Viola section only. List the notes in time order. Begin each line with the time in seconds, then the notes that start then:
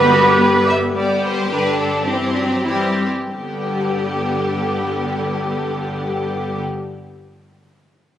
Already playing: G3 B3
0.94 G3
1.49 D3
2.05 E3
2.35 F#3
2.64 E3 G3
3.29 D3 G3